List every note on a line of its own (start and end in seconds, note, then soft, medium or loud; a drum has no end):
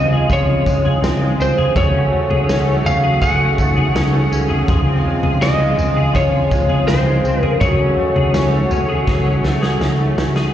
0.00 0.25 C#2 loud
0.00 1.74 C3 medium
0.00 1.74 C#3 medium
0.00 0.29 F3 medium
0.00 0.66 G#3 medium
0.00 0.48 C4 medium
0.00 1.74 F4 medium
0.00 0.12 G#4 medium
0.00 10.51 G#4 medium
0.00 0.27 D#5 loud
0.00 1.50 C6 medium
0.13 0.30 G#4 medium
0.30 0.62 C#2 loud
0.30 1.83 F3 medium
0.30 0.85 G#4 medium
0.30 1.00 C#5 medium
0.30 kick medium
0.30 floor tom medium
0.30 tambourine medium
0.66 0.98 C#2 loud
0.66 1.21 G#3 medium
0.66 kick medium
0.66 tambourine medium
0.85 1.57 G#4 medium
0.85 floor tom medium
1.03 1.35 C#2 loud
1.03 1.38 C4 medium
1.03 snare loud
1.03 tambourine medium
1.22 1.75 G#3 medium
1.39 1.72 C#2 medium
1.39 1.83 C4 medium
1.39 1.76 C5 medium
1.39 tambourine medium
1.58 1.76 G#4 medium
1.58 floor tom medium
1.76 2.08 C#2 loud
1.76 10.50 C#3 medium
1.76 2.11 A3 medium
1.76 4.66 A3 medium
1.76 4.66 F#4 medium
1.76 2.30 G#4 medium
1.76 2.89 C#5 medium
1.76 kick loud
1.76 floor tom loud
1.76 tambourine medium
1.94 2.48 C#4 medium
2.12 2.66 A3 medium
2.30 2.47 C#2 loud
2.30 3.03 G#4 medium
2.30 floor tom medium
2.49 2.81 C#2 loud
2.49 2.85 C#4 medium
2.49 snare loud
2.49 tambourine medium
2.67 3.20 A3 medium
2.85 3.18 C#2 medium
2.85 5.01 F#3 medium
2.85 3.39 C#4 medium
2.85 3.21 F5 loud
2.85 floor tom medium
2.85 tambourine medium
3.03 3.22 G#4 medium
3.21 3.54 C#2 loud
3.21 3.57 A3 medium
3.21 3.76 G#4 medium
3.21 4.28 F#5 loud
3.21 kick medium
3.21 tambourine medium
3.40 3.94 C#4 medium
3.58 3.91 C#2 loud
3.58 4.11 A3 medium
3.58 5.01 D#4 medium
3.58 kick medium
3.58 tambourine medium
3.76 4.49 G#4 medium
3.76 floor tom medium
3.95 4.27 C#2 loud
3.95 4.31 C#4 medium
3.95 snare loud
3.95 tambourine medium
4.12 4.75 A3 medium
4.31 4.64 C#2 loud
4.31 4.86 C#4 medium
4.31 tambourine medium
4.49 4.69 G#4 medium
4.49 floor tom medium
4.67 5.01 C#2 loud
4.67 7.58 C3 medium
4.67 6.12 F3 medium
4.67 7.58 F4 medium
4.67 5.23 G#4 medium
4.67 kick loud
4.67 floor tom loud
4.67 tambourine medium
4.87 5.40 C4 medium
5.05 5.59 G#3 medium
5.23 5.39 C#2 loud
5.23 5.96 G#4 medium
5.23 floor tom medium
5.41 5.74 C#2 loud
5.41 5.77 C4 medium
5.41 7.71 F4 medium
5.41 6.16 D#5 loud
5.41 snare loud
5.41 tambourine medium
5.59 6.51 G#3 medium
5.78 6.10 C#2 loud
5.78 6.33 C4 medium
5.78 floor tom medium
5.78 tambourine medium
5.96 6.14 G#4 medium
6.14 6.47 C#2 loud
6.14 7.61 F3 medium
6.14 6.69 G#4 medium
6.14 6.85 C#5 medium
6.14 kick medium
6.14 floor tom medium
6.14 tambourine medium
6.51 6.83 C#2 medium
6.51 7.05 G#3 medium
6.51 kick medium
6.51 tambourine medium
6.69 7.42 G#4 medium
6.69 floor tom medium
6.88 7.21 C#2 loud
6.88 7.23 C4 medium
6.88 7.44 C5 loud
6.88 snare loud
6.88 tambourine loud
7.06 7.97 G#3 medium
7.24 7.57 C#2 loud
7.24 7.68 C4 medium
7.24 tambourine medium
7.43 7.62 G#4 medium
7.43 7.60 A#4 loud
7.43 floor tom medium
7.60 7.93 C#2 loud
7.60 9.05 F#3 medium
7.60 10.51 A3 medium
7.60 10.51 F#4 medium
7.60 9.91 F#4 medium
7.60 8.15 G#4 medium
7.60 9.76 C#5 medium
7.60 kick loud
7.60 floor tom loud
7.60 tambourine medium
7.80 8.34 C#4 medium
7.86 10.12 D#5 soft
7.98 8.51 A3 medium
8.16 8.32 C#2 loud
8.16 8.88 G#4 medium
8.16 floor tom medium
8.34 8.66 C#2 loud
8.34 8.70 C#4 medium
8.34 10.54 G#4 medium
8.34 snare loud
8.34 tambourine medium
8.52 9.42 A3 medium
8.71 9.03 C#2 medium
8.71 9.25 C#4 medium
8.71 floor tom medium
8.71 tambourine medium
8.89 9.07 G#4 medium
9.07 9.40 C#2 loud
9.07 10.54 F#3 medium
9.07 9.61 G#4 medium
9.07 kick medium
9.07 snare medium
9.25 9.79 C#4 medium
9.43 9.76 C#2 loud
9.43 9.97 A3 medium
9.43 snare medium
9.61 10.35 G#4 medium
9.61 snare medium
9.80 10.13 C#2 loud
9.80 10.17 C#4 medium
9.80 snare medium
9.99 10.54 A3 medium
10.17 10.49 C#2 medium
10.17 10.54 C#4 medium
10.17 snare loud
10.36 10.54 G#4 medium
10.36 snare medium